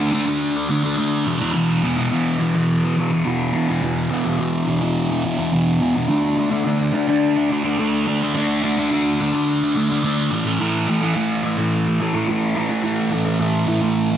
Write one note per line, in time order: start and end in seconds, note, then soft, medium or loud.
0.00 0.10 D3 medium
0.00 0.12 A3 medium
0.00 0.13 D4 medium
0.12 0.55 D3 medium
0.12 0.28 A3 medium
0.12 0.25 D4 medium
0.26 0.68 A3 medium
0.26 0.70 D4 medium
0.68 0.96 D3 medium
0.68 0.85 A3 medium
0.68 0.82 D4 medium
0.83 0.97 A3 medium
0.83 0.98 D4 medium
0.97 1.25 D3 medium
0.97 1.25 A3 medium
0.97 1.26 D4 medium
1.25 1.53 E2 medium
1.25 1.41 B2 medium
1.25 1.39 E3 medium
1.40 1.54 B2 soft
1.40 1.56 E3 medium
1.54 1.82 E2 medium
1.54 1.82 B2 medium
1.54 1.84 E3 medium
1.82 2.10 E2 medium
1.82 1.98 B2 medium
1.82 1.96 E3 medium
1.97 2.11 B2 medium
1.97 2.12 E3 medium
2.10 2.38 E2 medium
2.10 2.39 B2 medium
2.10 2.41 E3 medium
2.39 2.82 E2 medium
2.39 2.55 B2 medium
2.39 2.53 E3 medium
2.54 2.97 B2 medium
2.54 2.98 E3 medium
2.96 3.23 E2 medium
2.96 3.12 B2 medium
2.96 3.09 E3 medium
3.10 3.25 B2 medium
3.10 3.26 E3 medium
3.24 3.51 E2 medium
3.24 3.53 B2 medium
3.24 3.54 E3 medium
3.53 3.81 E2 medium
3.53 3.69 B2 medium
3.53 3.66 E3 medium
3.68 3.82 B2 soft
3.68 3.83 E3 medium
3.82 4.09 E2 medium
3.82 4.10 B2 medium
3.82 4.11 E3 medium
4.10 4.37 E2 medium
4.10 4.26 B2 medium
4.10 4.24 E3 medium
4.25 4.38 B2 soft
4.25 4.39 E3 medium
4.38 4.66 E2 medium
4.38 4.67 B2 medium
4.38 4.68 E3 medium
4.67 5.10 E2 medium
4.67 4.83 B2 medium
4.67 4.80 E3 medium
4.82 5.24 B2 medium
4.82 5.26 E3 medium
5.25 5.51 E2 medium
5.25 5.39 B2 medium
5.25 5.37 E3 medium
5.38 5.53 B2 medium
5.38 5.54 E3 medium
5.53 5.79 E2 medium
5.53 5.81 B2 medium
5.53 5.81 E3 medium
5.81 6.07 E2 medium
5.81 5.96 B2 medium
5.81 5.94 E3 medium
5.95 6.08 B2 medium
5.95 6.07 E3 medium
6.08 6.36 D3 medium
6.08 6.38 A3 medium
6.08 6.39 D4 medium
6.36 6.65 D3 medium
6.36 6.53 A3 medium
6.36 6.51 D4 medium
6.51 6.66 A3 soft
6.51 6.67 D4 medium
6.65 6.92 D3 medium
6.65 6.94 A3 medium
6.65 6.94 D4 medium
6.93 7.36 D3 medium
6.93 7.10 A3 medium
6.93 7.07 D4 medium
7.08 7.51 A3 medium
7.08 7.51 D4 medium
7.50 7.77 D3 medium
7.50 7.66 A3 medium
7.50 7.63 D4 medium
7.64 7.79 A3 medium
7.64 7.79 D4 medium
7.78 8.05 D3 medium
7.78 8.07 A3 medium
7.78 8.07 D4 medium
8.06 8.33 D3 medium
8.06 8.23 A3 medium
8.06 8.20 D4 medium
8.22 8.36 A3 soft
8.22 8.36 D4 medium
8.35 8.62 D3 medium
8.35 8.63 A3 medium
8.35 8.64 D4 medium
8.63 8.90 D3 medium
8.63 8.79 A3 medium
8.63 8.76 D4 medium
8.77 8.92 A3 soft
8.77 8.93 D4 medium
8.92 9.18 D3 medium
8.92 9.20 A3 medium
8.92 9.21 D4 medium
9.19 9.62 D3 medium
9.19 9.35 A3 medium
9.19 9.31 D4 medium
9.33 9.76 A3 medium
9.33 9.76 D4 medium
9.75 10.01 D3 medium
9.75 9.91 A3 medium
9.75 9.88 D4 medium
9.89 10.03 A3 medium
9.89 10.04 D4 medium
10.03 10.30 D3 medium
10.03 10.32 A3 medium
10.03 10.31 D4 medium
10.31 10.58 A2 medium
10.31 10.47 E3 medium
10.31 10.44 A3 medium
10.45 10.59 E3 soft
10.45 10.60 A3 medium
10.58 10.87 A2 medium
10.58 10.88 E3 medium
10.58 10.89 A3 medium
10.87 11.14 A2 medium
10.87 11.03 E3 medium
10.87 11.01 A3 medium
11.01 11.15 E3 medium
11.01 11.16 A3 medium
11.14 11.42 A2 medium
11.14 11.44 E3 medium
11.14 11.45 A3 medium
11.43 11.86 A2 medium
11.43 11.60 E3 medium
11.43 11.56 A3 medium
11.58 12.00 E3 medium
11.58 12.01 A3 medium
12.00 12.27 A2 medium
12.00 12.16 E3 medium
12.00 12.13 A3 medium
12.14 12.29 E3 medium
12.14 12.29 A3 medium
12.28 12.54 A2 medium
12.28 12.56 E3 medium
12.28 12.57 A3 medium
12.55 12.82 A2 medium
12.55 12.70 E3 medium
12.55 12.68 A3 medium
12.69 12.83 E3 soft
12.69 12.84 A3 medium
12.83 13.10 A2 medium
12.83 13.11 E3 medium
12.83 13.12 A3 medium
13.11 13.38 A2 medium
13.11 13.26 E3 medium
13.11 13.24 A3 medium
13.25 13.39 E3 medium
13.25 13.41 A3 medium
13.39 13.66 A2 medium
13.39 13.67 E3 medium
13.39 13.68 A3 medium
13.67 14.10 A2 medium
13.67 13.82 E3 medium
13.67 13.80 A3 medium
13.81 14.17 E3 medium
13.81 14.17 A3 medium